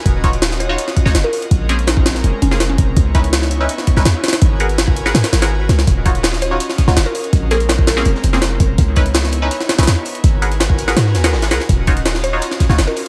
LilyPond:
<<
  \new Staff \with { instrumentName = "Synth pluck" } { \time 4/4 \key ees \minor \tempo 4 = 165 r4. des''8 r4 r16 bes'8 r16 | r4 ees'8 r4 des'8 r16 des'8. | r1 | r1 |
r4. des''8 r4 r16 bes'8 r16 | r8 bes'8 r8 bes'4 r4. | r1 | r1 |
r4. des''8 r4 r16 bes'8 r16 | }
  \new Staff \with { instrumentName = "Synth stab" } { \time 4/4 \key ees \minor r8 <ees' f' ges' des''>16 r4 <ees' f' ges' des''>16 r8. <ees' f' ges' des''>16 r4 | r8 <bes c' des' aes'>16 r2 <bes c' des' aes'>16 r4 | r8 <des' ees' fes' ces''>16 r4 <des' ees' fes' ces''>16 r8. <des' ees' fes' ces''>16 r4 | r8 <aes' bes' ces'' ges''>16 r4 <aes' bes' ces'' ges''>16 r8. <aes' bes' ces'' ges''>16 r4 |
r8 <ees' f' ges' des''>16 r4 <ees' f' ges' des''>16 r8. <ees' f' ges' des''>16 r4 | r8 <bes c' des' aes'>16 r4 <bes c' des' aes'>16 r8. <bes c' des' aes'>16 r4 | r8 <des' ees' fes' ces''>16 r4 <des' ees' fes' ces''>16 r8. <des' ees' fes' ces''>16 r4 | r8 <aes' bes' ces'' ges''>16 r4 <aes' bes' ces'' ges''>16 r8. <aes' bes' ces'' ges''>16 r8 <aes' bes' ces'' ges''>16 r16 |
r8 <ees' f' ges' des''>16 r4 <ees' f' ges' des''>16 r8. <ees' f' ges' des''>16 r4 | }
  \new Staff \with { instrumentName = "Analog synth pad" } { \time 4/4 \key ees \minor <des' f' ges' ees''>8. <des' f' ges' ees''>4.~ <des' f' ges' ees''>16 r16 <des' f' ges' ees''>16 r8 <des' f' ges' ees''>8 | <aes c' des' bes'>8. <aes c' des' bes'>4.~ <aes c' des' bes'>16 r16 <aes c' des' bes'>16 r8 <aes c' des' bes'>8 | <ces' ees' fes' des''>8. <ces' ees' fes' des''>4.~ <ces' ees' fes' des''>16 r16 <ces' ees' fes' des''>16 r8 <ces' ees' fes' des''>8 | <ges' bes' ces'' aes''>8. <ges' bes' ces'' aes''>4.~ <ges' bes' ces'' aes''>16 <ges' bes' ces'' aes''>16 r4 r16 |
<des' f' ges' ees''>8. <des' f' ges' ees''>4.~ <des' f' ges' ees''>16 r16 <des' f' ges' ees''>16 r8 <des' f' ges' ees''>8 | <aes c' des' bes'>8. <aes c' des' bes'>4.~ <aes c' des' bes'>16 r16 <aes c' des' bes'>16 r8 <aes c' des' bes'>8 | <ces' ees' fes' des''>8. <ces' ees' fes' des''>4.~ <ces' ees' fes' des''>16 r16 <ces' ees' fes' des''>16 r8 <ces' ees' fes' des''>8 | <ges' bes' ces'' aes''>8. <ges' bes' ces'' aes''>4.~ <ges' bes' ces'' aes''>16 <ges' bes' ces'' aes''>16 r4 r16 |
<des' f' ges' ees''>8. <des' f' ges' ees''>4.~ <des' f' ges' ees''>16 r16 <des' f' ges' ees''>16 r8 <des' f' ges' ees''>8 | }
  \new Staff \with { instrumentName = "808-style bass" } { \clef bass \time 4/4 \key ees \minor ees,,2 r8. des,16 ges,,16 r8. | bes,,2 f,,16 r16 f,,4 f,,8 | des,2 r8. ces,16 fes,16 r8. | aes,,2 aes,16 r16 aes,,4 des,8 |
ees,,2 r8. des,16 ges,,16 r8. | bes,,2 f,,16 r16 f,,4 f,,8 | des,2 r8. ces,16 fes,16 r8. | aes,,2 aes,8 ees,8 aes,,8 des,16 r16 |
ees,,2 r8. des,16 ges,,16 r8. | }
  \new DrumStaff \with { instrumentName = "Drums" } \drummode { \time 4/4 <hh bd>8 <hh bd>16 hh16 <hh sn>16 sn16 hh8 hh16 sn16 <hh bd>16 sn16 <hh sn>8 hho16 hh16 | <hh bd>8 hh16 hh16 <hh sn>16 bd16 <hh sn>16 sn16 hh8 hh16 sn16 <hh sn>8 <hh bd>8 | <hh bd>8 <hh bd>16 hh16 <hh sn>16 sn16 hh8 hh16 sn16 <hh bd>16 sn16 <hh sn>8 <hh sn>32 <hh sn>32 <hh sn>16 | <hh bd>8 hh16 hh16 <hh sn>16 bd16 hh16 sn16 <hh sn>16 <hh sn>16 <hh sn>16 <hh sn>16 r8 <hh sn>16 sn16 |
<hh bd>8 <hh bd>16 hh16 <hh hho sn>16 sn16 hh8 hh16 sn16 <hh bd sn>16 sn16 <hh sn>16 hh16 <hh hho>16 hh16 | <hh bd>8 hh16 hh16 <hh sn>16 bd16 <hh sn>16 sn16 hh16 sn16 hh16 sn16 <hh sn>8 <hh bd>8 | <hh bd>8 <hh bd>16 hh16 <hh hho sn>16 sn16 hh8 hh16 sn16 <hh sn>16 <hh sn>32 <hh sn>32 <hh sn>16 hh16 <hh hho>16 hh16 | <hh bd>8 hh16 hh16 <hh sn>16 bd16 hh16 sn16 <hh sn>16 sn16 <hh sn>16 <hh sn>16 <hho sn>16 <hh hho sn>16 <hh sn>16 sn16 |
<hh bd>8 <hh bd>16 hh16 <hh hho sn>16 sn16 hh8 hh16 sn16 <hh bd sn>16 sn16 <hh sn>16 hh16 <hh hho>8 | }
>>